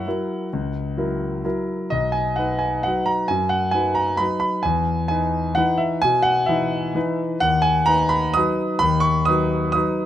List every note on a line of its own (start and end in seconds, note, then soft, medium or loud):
0.00 1.43 F#5 medium
0.07 0.48 F#3 soft
0.07 0.49 E4 soft
0.07 0.49 A#4 soft
0.53 0.96 C#2 medium
0.97 1.41 F#3 soft
0.97 1.41 E4 soft
0.97 1.41 A#4 soft
1.45 1.88 F#3 soft
1.45 1.88 E4 soft
1.45 1.88 A#4 soft
1.90 2.37 B1 medium
1.90 2.14 D#5 medium
2.12 2.37 G#5 medium
2.36 2.81 D#4 soft
2.36 2.82 B4 soft
2.36 2.60 F#5 medium
2.59 2.84 G#5 medium
2.83 3.27 F#3 soft
2.83 3.27 D#4 soft
2.83 3.28 B4 soft
2.83 3.08 F#5 medium
3.06 3.29 A#5 medium
3.28 3.73 F#2 medium
3.28 3.51 G#5 medium
3.49 3.73 F#5 medium
3.71 4.16 F#3 soft
3.71 4.16 D#4 soft
3.71 4.17 B4 soft
3.71 3.96 G#5 medium
3.95 4.19 A#5 medium
4.17 4.61 F#3 soft
4.17 4.62 D#4 soft
4.17 4.62 B4 soft
4.17 4.38 B5 medium
4.40 4.64 B5 medium
4.63 5.09 E2 medium
4.63 5.07 G#5 medium
5.08 5.53 D#4 soft
5.08 5.53 B4 soft
5.08 5.56 G#5 medium
5.55 6.00 E3 soft
5.55 6.00 D#4 soft
5.55 6.00 B4 soft
5.55 5.80 F#5 medium
5.78 6.02 E5 medium
6.02 6.47 B2 medium
6.02 6.25 G#5 loud
6.22 6.47 F#5 medium
6.46 6.92 E3 soft
6.46 6.92 D#4 soft
6.46 6.92 B4 soft
6.46 7.18 E5 medium
6.95 7.38 E3 soft
6.95 7.38 D#4 soft
6.95 7.38 B4 medium
7.40 7.87 D#2 medium
7.40 7.64 F#5 medium
7.62 7.87 G#5 medium
7.86 8.31 D#4 soft
7.86 8.32 B4 medium
7.86 8.11 A#5 medium
8.09 8.34 B5 medium
8.34 8.78 F#3 soft
8.34 8.78 D#4 soft
8.34 8.78 B4 medium
8.34 8.80 D#6 medium
8.79 9.26 D#2 medium
8.79 9.03 B5 loud
9.00 9.26 C#6 loud
9.25 9.72 F#3 soft
9.25 9.72 D#4 soft
9.25 9.72 B4 medium
9.25 9.71 D#6 medium
9.72 10.06 F#3 soft
9.72 10.06 D#4 soft
9.72 10.06 B4 soft
9.72 10.06 D#6 medium